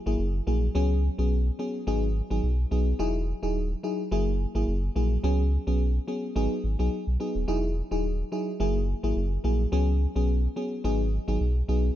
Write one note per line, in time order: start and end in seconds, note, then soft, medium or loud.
0.06 0.16 G#1 medium
0.06 0.21 F#3 medium
0.06 0.22 A#3 medium
0.06 0.22 E4 medium
0.06 0.22 G#4 medium
0.19 0.41 F#1 medium
0.47 0.69 A#1 medium
0.47 0.64 F#3 medium
0.47 0.65 A#3 medium
0.47 0.65 E4 medium
0.47 0.65 G#4 medium
0.75 1.09 C#2 loud
0.75 0.92 F#3 loud
0.75 0.93 B3 medium
0.75 0.93 C#4 medium
0.75 0.93 G#4 loud
1.18 1.50 B1 medium
1.18 1.34 F#3 medium
1.18 1.34 B3 medium
1.18 1.34 C#4 medium
1.18 1.34 G#4 medium
1.59 1.77 F#3 medium
1.59 1.77 B3 medium
1.59 1.77 C#4 medium
1.59 1.77 G#4 medium
1.87 2.21 G#1 loud
1.87 2.05 F#3 medium
1.87 2.05 B3 medium
1.87 2.05 D#4 medium
1.87 2.05 G#4 loud
2.30 2.41 G#1 medium
2.30 2.46 F#3 medium
2.30 2.46 B3 medium
2.30 2.46 D#4 medium
2.30 2.46 G#4 medium
2.43 2.65 B1 loud
2.71 2.93 B1 medium
2.71 2.89 F#3 medium
2.71 2.89 B3 medium
2.71 2.89 D#4 medium
2.71 2.89 G#4 medium
2.99 3.34 E1 loud
2.99 3.17 F#3 loud
2.99 3.17 D#4 medium
2.99 3.17 E4 medium
2.99 3.17 G#4 loud
3.43 3.75 D#1 medium
3.43 3.58 F#3 medium
3.43 3.58 D#4 medium
3.43 3.58 E4 medium
3.43 3.58 G#4 medium
3.83 4.01 F#3 medium
3.83 4.01 D#4 medium
3.83 4.01 E4 medium
3.83 4.01 G#4 medium
4.11 4.46 F#1 loud
4.11 4.29 F#3 medium
4.11 4.29 A#3 medium
4.11 4.29 E4 medium
4.11 4.29 G#4 loud
4.55 4.65 G#1 loud
4.55 4.70 F#3 medium
4.55 4.70 A#3 medium
4.55 4.70 E4 medium
4.55 4.70 G#4 medium
4.68 4.90 F#1 loud
4.96 5.18 A#1 medium
4.96 5.13 F#3 medium
4.96 5.13 A#3 medium
4.96 5.13 E4 medium
4.96 5.13 G#4 medium
5.23 5.58 C#2 loud
5.23 5.41 F#3 medium
5.23 5.41 B3 medium
5.23 5.41 C#4 medium
5.23 5.41 G#4 loud
5.67 5.99 B1 medium
5.67 5.82 F#3 medium
5.67 5.82 B3 medium
5.67 5.82 C#4 medium
5.67 5.83 G#4 medium
6.07 6.25 F#3 medium
6.07 6.25 B3 medium
6.07 6.25 C#4 medium
6.07 6.26 G#4 medium
6.36 6.48 G#1 loud
6.36 6.53 F#3 medium
6.36 6.53 B3 medium
6.36 6.53 D#4 medium
6.36 6.54 G#4 loud
6.64 6.76 G#1 medium
6.79 6.89 B1 medium
6.79 6.94 F#3 medium
6.79 6.94 B3 medium
6.79 6.95 D#4 medium
6.79 6.95 G#4 medium
7.07 7.17 B1 medium
7.20 7.37 F#3 medium
7.20 7.38 B3 medium
7.20 7.38 D#4 medium
7.20 7.38 G#4 medium
7.35 7.45 D#1 medium
7.48 7.82 E1 loud
7.48 7.65 F#3 medium
7.48 7.66 D#4 medium
7.48 7.66 E4 medium
7.48 7.66 G#4 loud
7.91 8.23 D#1 medium
7.91 8.07 F#3 medium
7.91 8.07 D#4 medium
7.91 8.07 E4 medium
7.91 8.07 G#4 medium
8.32 8.50 F#3 medium
8.32 8.50 D#4 medium
8.32 8.50 E4 medium
8.32 8.50 G#4 medium
8.60 8.94 F#1 loud
8.60 8.78 F#3 medium
8.60 8.78 A#3 medium
8.60 8.78 E4 medium
8.60 8.78 G#4 loud
9.03 9.13 G#1 medium
9.03 9.19 F#3 medium
9.03 9.19 A#3 medium
9.03 9.19 E4 medium
9.03 9.19 G#4 medium
9.16 9.38 F#1 medium
9.44 9.66 A#1 medium
9.44 9.62 F#3 medium
9.44 9.62 A#3 medium
9.44 9.62 E4 medium
9.44 9.62 G#4 medium
9.72 10.06 C#2 loud
9.72 9.90 F#3 loud
9.72 9.90 B3 medium
9.72 9.90 C#4 medium
9.72 9.90 G#4 loud
10.16 10.48 B1 medium
10.16 10.31 F#3 medium
10.16 10.31 B3 medium
10.16 10.31 C#4 medium
10.16 10.31 G#4 medium
10.56 10.74 F#3 medium
10.56 10.74 B3 medium
10.56 10.74 C#4 medium
10.56 10.74 G#4 medium
10.84 11.19 G#1 loud
10.84 11.02 F#3 medium
10.84 11.02 B3 medium
10.84 11.02 D#4 medium
10.84 11.02 G#4 loud
11.28 11.38 G#1 medium
11.28 11.43 F#3 medium
11.28 11.43 B3 medium
11.28 11.43 D#4 medium
11.28 11.43 G#4 medium
11.40 11.63 B1 loud
11.68 11.91 B1 medium
11.68 11.86 F#3 medium
11.68 11.86 B3 medium
11.68 11.86 D#4 medium
11.68 11.86 G#4 medium